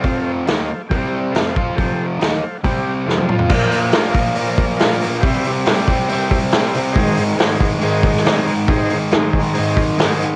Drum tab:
CC |----------------|----------------|x---------------|----------------|
HH |o---o---o---o---|o---o---o-------|--o-o-o-o-o-o-o-|o-o-o-o-o-o-o-o-|
SD |----o-------o---|----o-------o---|----o-------o---|----o-------o---|
T1 |----------------|-------------o--|----------------|----------------|
T2 |----------------|--------------o-|----------------|----------------|
FT |----------------|---------------o|----------------|----------------|
BD |o-------o-----o-|o-------o-------|o-----o---o-----|o-----o---o-----|

CC |----------------|----------------|
HH |o-o-o-o-o-o-o-o-|o-o-o-o-o-o-o-o-|
SD |----o------oo---|----o-------o---|
T1 |----------------|----------------|
T2 |----------------|----------------|
FT |----------------|----------------|
BD |o-----o---o-----|o-----o---o-----|